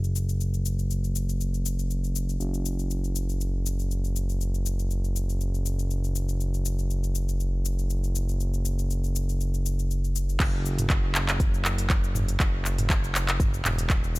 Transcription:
0.00 2.38 F#1 medium
0.04 cabasa soft
0.15 cabasa medium
0.29 cabasa soft
0.40 cabasa soft
0.54 cabasa soft
0.65 cabasa medium
0.79 cabasa soft
0.91 cabasa medium
1.04 cabasa soft
1.15 cabasa medium
1.29 cabasa soft
1.41 cabasa soft
1.54 cabasa soft
1.66 cabasa medium
1.79 cabasa soft
1.91 cabasa soft
2.04 cabasa soft
2.15 cabasa medium
2.29 cabasa soft
2.40 10.38 F#1 medium
2.40 cabasa soft
2.54 cabasa soft
2.65 cabasa medium
2.79 cabasa soft
2.91 cabasa soft
3.04 cabasa soft
3.16 cabasa medium
3.29 cabasa soft
3.41 cabasa soft
3.66 cabasa medium
3.79 cabasa soft
3.91 cabasa soft
4.04 cabasa soft
4.16 cabasa medium
4.29 cabasa soft
4.41 cabasa soft
4.54 cabasa soft
4.66 cabasa medium
4.79 cabasa soft
4.91 cabasa soft
5.04 cabasa soft
5.16 cabasa medium
5.29 cabasa soft
5.41 cabasa soft
5.54 cabasa soft
5.66 cabasa medium
5.79 cabasa soft
5.91 cabasa soft
6.04 cabasa soft
6.15 cabasa medium
6.29 cabasa soft
6.40 cabasa soft
6.54 cabasa soft
6.65 cabasa medium
6.79 cabasa soft
6.90 cabasa soft
7.04 cabasa soft
7.15 cabasa medium
7.29 cabasa soft
7.40 cabasa soft
7.65 cabasa medium
7.79 cabasa soft
7.90 cabasa soft
8.04 cabasa soft
8.15 cabasa medium
8.29 cabasa soft
8.40 cabasa soft
8.54 cabasa soft
8.65 cabasa medium
8.79 cabasa soft
8.90 cabasa soft
9.04 cabasa soft
9.16 cabasa medium
9.29 cabasa soft
9.41 cabasa soft
9.54 cabasa soft
9.66 cabasa medium
9.79 cabasa soft
9.91 cabasa soft
10.04 cabasa soft
10.16 cabasa medium
10.29 cabasa soft
10.40 12.37 F#1 loud
10.40 kick loud
10.40 clap medium
10.40 closed hi-hat soft
10.40 crash loud
10.40 cabasa medium
10.66 cabasa loud
10.79 closed hi-hat medium
10.79 mid tom medium
10.79 cabasa soft
10.90 kick loud
10.90 clap loud
10.90 closed hi-hat soft
10.90 cabasa medium
11.15 clap loud
11.15 cabasa medium
11.29 clap medium
11.29 closed hi-hat medium
11.29 cabasa soft
11.40 kick loud
11.40 closed hi-hat soft
11.40 cabasa medium
11.54 cabasa soft
11.65 clap medium
11.65 cabasa medium
11.78 closed hi-hat medium
11.78 cabasa soft
11.90 kick loud
11.90 clap loud
11.90 closed hi-hat soft
11.90 cabasa medium
12.04 cabasa soft
12.15 mid tom medium
12.15 cabasa medium
12.28 closed hi-hat medium
12.28 cabasa soft
12.40 13.62 F#1 loud
12.40 kick loud
12.40 clap loud
12.40 closed hi-hat soft
12.40 cabasa medium
12.65 clap medium
12.65 cabasa loud
12.78 closed hi-hat medium
12.78 mid tom medium
12.78 cabasa soft
12.90 kick loud
12.90 clap loud
12.90 closed hi-hat soft
12.90 cabasa medium
13.04 cabasa soft
13.15 clap loud
13.15 cabasa loud
13.29 clap medium
13.29 closed hi-hat medium
13.29 cabasa soft
13.40 kick loud
13.40 closed hi-hat soft
13.40 mid tom medium
13.40 cabasa medium
13.54 cabasa soft
13.64 14.19 E1 medium
13.64 clap medium
13.64 mid tom medium
13.64 cabasa medium
13.78 closed hi-hat medium
13.78 cabasa soft
13.90 kick loud
13.90 clap loud
13.90 closed hi-hat soft
13.90 cabasa medium
14.04 cabasa soft
14.15 cabasa loud

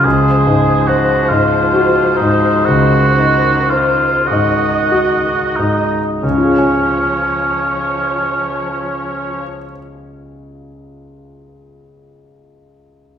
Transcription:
0.04 2.63 C#2 soft
0.04 2.63 F3 soft
0.04 0.89 G#4 medium
0.04 4.24 C5 soft
0.47 1.14 G#2 soft
0.87 1.31 F#4 medium
0.87 1.56 C5 soft
1.29 2.00 G#2 soft
1.29 2.18 F4 medium
1.74 2.48 F#4 soft
2.17 2.67 D#4 soft
2.21 2.98 G#2 soft
2.66 6.19 C#2 soft
2.66 4.27 D#3 soft
2.66 3.72 F#4 medium
3.20 4.06 D#4 soft
3.70 4.29 F4 soft
3.70 4.66 C5 soft
4.28 5.32 G#2 soft
4.28 5.85 D#3 soft
4.28 5.58 F#4 soft
4.28 5.85 D#5 soft
4.92 5.98 F#4 soft
5.56 6.22 G#2 soft
5.56 6.05 D#4 soft
6.22 9.43 C#2 soft
6.22 9.41 F3 soft
6.22 9.41 C#4 soft
6.22 9.42 C#5 soft
6.30 9.49 C#3 soft
6.37 9.57 F4 soft
6.44 9.64 G#4 soft
6.51 9.70 C#5 soft
6.58 9.78 G#5 soft

